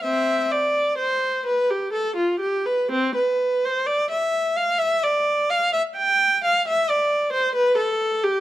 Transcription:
\new Staff \with { instrumentName = "Viola" } { \time 3/4 \key c \major \tempo 4 = 64 <c' e''>8 d''8 c''8 b'16 g'16 a'16 f'16 g'16 b'16 | c'16 b'8 c''16 d''16 e''8 f''16 e''16 d''8 f''16 | e''16 g''8 f''16 e''16 d''8 c''16 b'16 a'8 g'16 | }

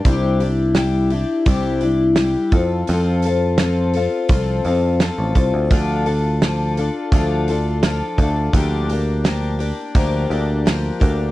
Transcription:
<<
  \new Staff \with { instrumentName = "Twelve-string acoustic guitar" } { \time 4/4 \key d \minor \tempo 4 = 85 <c g d' e' g'>8 <d' e' g'>8 <g d' e' g'>8 <d' e' g'>8 <c g d' e' g'>8 <d' e' g'>8 <g d' e' g'>8 <c' f' a'>8 | <f c' f' a'>8 <c' f' a'>8 <f c' f' a'>8 <c' f' a'>8 <f c' f' a'>8 <c' f' a'>8 <f c' f' a'>8 <c' f' a'>8 | <d f d' f' a'>8 <d' f' a'>8 <f d' f' a'>8 <d' f' a'>8 <d f d' f' a'>8 <d' f' a'>8 <f d' f' a'>8 <d' f' a'>8 | <d f bes d' g'>8 <bes d' g'>8 <f bes d' g'>8 <bes d' g'>8 <d f bes d' g'>8 <bes d' g'>8 <f bes d' g'>8 <bes d' g'>8 | }
  \new Staff \with { instrumentName = "Picked electric bass" } { \clef bass \time 4/4 \key d \minor c,2 c,4. f,8 | f,2 c,8 f,8. a,,16 c,16 d,16 | d,2 d,4. d,8 | d,2 d,8 d,4 d,8 | }
  \new DrumStaff \with { instrumentName = "Drums" } \drummode { \time 4/4 <hho bd>8 hho8 <hho sn>8 hho8 <hho bd>8 hho8 <hho sn>8 <hho bd>8 | hho8 hho8 <hho sn>8 hho8 <hho bd>8 hho8 <hho sn>8 <hho bd>8 | <hho bd>8 hho8 <hho sn>8 hho8 <hho bd>8 hho8 <hho sn>8 <hho bd>8 | <hho bd>8 hho8 <hho sn>8 hho8 <hho bd>8 hho8 <hho sn>8 <hho bd>8 | }
>>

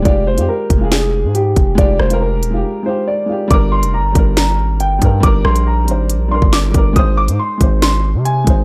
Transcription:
<<
  \new Staff \with { instrumentName = "Grand piano" } { \time 4/4 \key g \phrygian \tempo 4 = 139 d''8 c''8 bes'4 aes'4 g'4 | d''8 c''8 bes'4. c''8 d''4 | d'''8 c'''8 bes''4 bes''4 g''4 | d'''8 c'''8 bes''4. c'''8 d'''4 |
ees'''8 d'''8 c'''4 c'''4 aes''4 | }
  \new Staff \with { instrumentName = "Grand piano" } { \time 4/4 \key g \phrygian <aes f' g'>8. <aes f' g'>4 <aes f' aes'>4.~ <aes f' aes'>16 r8 | <aes f' g'>8. <aes f' bes'>4 <aes f' g'>8. <aes f' g'>4 <aes f' g'>8 | <g d' bes'>4~ <g d' bes'>16 r16 <g d' bes'>4.~ <g d' bes'>16 r16 <g d' bes'>8 | <g d' bes'>4~ <g d' bes'>16 r16 <g d' c''>4 <g d' bes'>4 <g d' bes'>8 |
<aes ees' c''>4~ <aes ees' c''>16 r16 <aes ees' c''>4.~ <aes ees' c''>16 r16 <aes ees' c''>8 | }
  \new Staff \with { instrumentName = "808-style bass" } { \clef bass \time 4/4 \key g \phrygian f,,8. f,16 r8 f,,4~ f,,16 aes,8. f,,8 | f,,8 f,,4 ees,,16 f,,16 r2 | g,,8. f,,16. g,,16. g,,4 aes,,8 g,,8 g,8 | g,,8 bes,,4 aes,,8~ aes,,32 bes,,8~ bes,,32 g,,8. g,,8 |
aes,,8. aes,16 r8 aes,,4~ aes,,16 c8. aes,,8 | }
  \new DrumStaff \with { instrumentName = "Drums" } \drummode { \time 4/4 <hh bd>8. hh16 r8 <hh bd>8 <hh sn>4 hh8 <hh bd>8 | <hh bd>8 ss16 hh16 r8 hh8 r4 r4 | <hh bd>8. hh16 r8 <hh bd>8 <hh sn>4 hh8 <hh bd>8 | <hh bd>8 ss16 hh16 r8 hh8 hh8. bd16 <hh sn>8 <hh bd>8 |
<hh bd>8. hh16 r8 <hh bd>8 <hh sn>4 hh8 <hh bd>8 | }
>>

